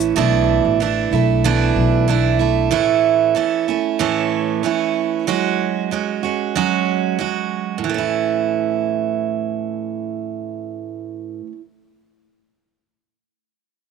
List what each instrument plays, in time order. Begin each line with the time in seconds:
Already playing: upright bass A1, steel-string acoustic guitar E3 A3 C#4 E4
0.00 shaker
0.16 upright bass B1, steel-string acoustic guitar B2 E3 A3 D4 E4
0.65 upright bass A1
0.80 steel-string acoustic guitar E3 A3 D4 E4
1.11 upright bass B1, steel-string acoustic guitar A3 D4 E4
1.44 steel-string acoustic guitar B2 E3 A3 D4 E4
1.76 upright bass B1
2.08 steel-string acoustic guitar E3 A3 D4 E4
2.39 steel-string acoustic guitar A3 D4 E4
2.71 steel-string acoustic guitar A2 E3 A3 C#4 E4
3.35 steel-string acoustic guitar E3 A3 C#4 E4
3.68 steel-string acoustic guitar A3 C#4 E4
3.99 steel-string acoustic guitar A2 E3 A3 C#4 E4
4.63 steel-string acoustic guitar E3 A3 C#4 E4
5.27 steel-string acoustic guitar F#3 G#3 C#4 F#4
5.91 steel-string acoustic guitar F#3 G#3 C#4 F#4
6.23 steel-string acoustic guitar G#3 C#4 F#4
6.55 steel-string acoustic guitar F#3 G#3 C#4 F#4
7.19 steel-string acoustic guitar F#3 G#3 C#4 F#4
7.78 steel-string acoustic guitar A2
7.84 steel-string acoustic guitar E3
7.89 steel-string acoustic guitar A3
7.94 steel-string acoustic guitar C#4
7.98 steel-string acoustic guitar E4